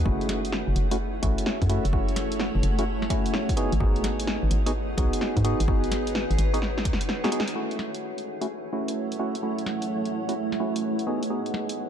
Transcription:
Already playing: ambient pad B4 F#5
0.05 fm bass F#1, synth stab A3 C#4 E4 F#4, ambient pad E4 G#4 A4 C#5 E5, kick
0.21 closed hi-hat
0.27 ambient pad A3, snare, closed hi-hat
0.37 ambient pad C#5
0.45 closed hi-hat
0.52 snare
0.68 fm bass F#1
0.76 fm bass F#1, closed hi-hat
0.91 synth stab A3 C#4 E4 F#4, closed hi-hat
1.23 fm bass A1, synth stab A3 C#4 E4 F#4, kick, closed hi-hat
1.38 closed hi-hat
1.46 snare
1.62 fm bass F#2, kick, closed hi-hat
1.69 synth stab A3 C#4 E4 F#4, closed hi-hat
1.85 fm bass F#1, closed hi-hat
1.93 synth stab A3 C#4 E4 F#4, kick
2.09 closed hi-hat
2.16 snare, closed hi-hat
2.32 closed hi-hat
2.40 snare
2.55 fm bass F#1
2.63 fm bass F#1, closed hi-hat
2.79 synth stab A3 C#4 E4 F#4, closed hi-hat
3.02 snare
3.10 synth stab A3 C#4 E4 F#4, kick, snare, closed hi-hat
3.26 closed hi-hat
3.34 snare
3.49 kick, closed hi-hat
3.57 synth stab B3 D#4 F#4 G#4, ambient pad D#4 F#4 B4 D#5, closed hi-hat
3.72 fm bass G#1, closed hi-hat
3.80 fm bass G#1, synth stab B3 D#4 F#4 G#4, kick
3.84 ambient pad G#4
3.94 ambient pad B4, closed hi-hat
4.04 snare, closed hi-hat
4.20 closed hi-hat
4.27 snare
4.43 fm bass G#1
4.51 fm bass G#1, closed hi-hat
4.66 synth stab B3 D#4 F#4 G#4, closed hi-hat
4.98 fm bass B1, synth stab B3 D#4 F#4 G#4, kick, closed hi-hat
5.13 closed hi-hat
5.21 snare
5.37 fm bass G#2, kick, closed hi-hat
5.44 synth stab B3 D#4 F#4 G#4, ambient pad C#5, closed hi-hat
5.60 fm bass G#1, closed hi-hat
5.68 synth stab B3 D#4 F#4 G#4, kick
5.84 closed hi-hat
5.92 snare, closed hi-hat
6.07 closed hi-hat
6.15 snare
6.31 fm bass G#1, closed hi-hat
6.38 fm bass G#1, closed hi-hat
6.54 synth stab B3 D#4 F#4 G#4, closed hi-hat
6.62 snare
6.78 snare
6.85 fm bass D#2, kick, closed hi-hat
6.93 snare
7.01 closed hi-hat
7.09 snare
7.24 synth stab B3 D#4 F#4 G#4, snare, closed hi-hat
7.32 synth stab B3 D#4 F#4 G#4, closed hi-hat
7.40 snare
7.48 closed hi-hat
7.55 ambient pad F#3 E4 G#4 A4 C#5 E5, synth stab A3 C#4 E4 F#4
7.67 ambient pad A3, closed hi-hat
7.79 snare
7.85 ambient pad F#5
7.95 closed hi-hat
8.01 ambient pad C#5
8.18 closed hi-hat
8.41 synth stab A3 C#4 E4 F#4, closed hi-hat
8.73 synth stab A3 C#4 E4 F#4
8.88 closed hi-hat
9.12 closed hi-hat
9.19 synth stab A3 C#4 E4 F#4
9.35 closed hi-hat
9.43 synth stab A3 C#4 E4 F#4, ambient pad B4
9.59 closed hi-hat
9.66 snare
9.82 closed hi-hat
10.05 closed hi-hat
10.29 synth stab A3 C#4 E4 F#4, closed hi-hat
10.52 snare
10.60 synth stab A3 C#4 E4 F#4
10.76 closed hi-hat
10.99 closed hi-hat
11.07 synth stab B3 D#4 F#4 G#4, ambient pad D#4 F#4 D#5
11.21 ambient pad B4, closed hi-hat
11.27 synth stab B3 D#4 F#4 G#4, ambient pad G#4
11.46 closed hi-hat
11.54 snare
11.69 closed hi-hat

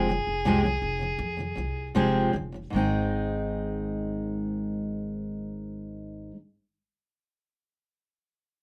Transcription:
Already playing: upright bass F1, steel-string acoustic guitar G#4, harmonica G#4
0.09 steel-string acoustic guitar F2 C3 F3
0.27 upright bass F1
0.45 upright bass C2, steel-string acoustic guitar F2 C3 F3 G#3 C4 G#4
0.64 steel-string acoustic guitar F2 C3 F3
0.82 upright bass F1
0.99 steel-string acoustic guitar F2 C3 F3
1.19 upright bass F2
1.37 steel-string acoustic guitar F2 C3 F3
1.55 upright bass C2, steel-string acoustic guitar F2 C3 F3
1.95 upright bass F1, steel-string acoustic guitar F2 C3 F3 G#3 C4 G#4
2.33 upright bass F1, steel-string acoustic guitar F2 C3 F3
2.52 steel-string acoustic guitar F2 C3 F3
2.70 upright bass G#1, steel-string acoustic guitar G#2 D#3
2.74 steel-string acoustic guitar G#3 C4 D#4
2.79 steel-string acoustic guitar G#4

